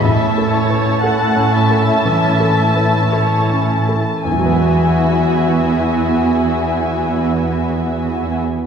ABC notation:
X:1
M:4/4
L:1/8
Q:1/4=54
K:E
V:1 name="Violin section"
a8 | g8 |]
V:2 name="Violin section"
e c f e3 c z | [Fe]8 |]
V:3 name="Grand piano"
(3A,, A B (3A C A (3E, A B (3A C A | [E,,E,F,B,B]8 |]
V:4 name="Viola section"
[CE]8 | [B,E]8 |]
V:5 name="Harp"
[A,,A,CA]8 | [E,,E,G,B,FB]8 |]
V:6 name="Cello section" clef=bass
A,,8 | E,,8 |]